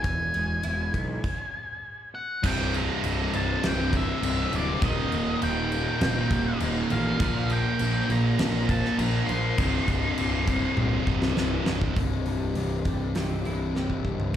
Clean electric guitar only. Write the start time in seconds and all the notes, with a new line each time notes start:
0.05 E2
0.35 G#3
0.64 E4
0.94 B3
11.98 C2
12.26 G2
12.57 C3
12.87 G3
13.16 C3
13.46 E4
13.76 G3
14.06 G2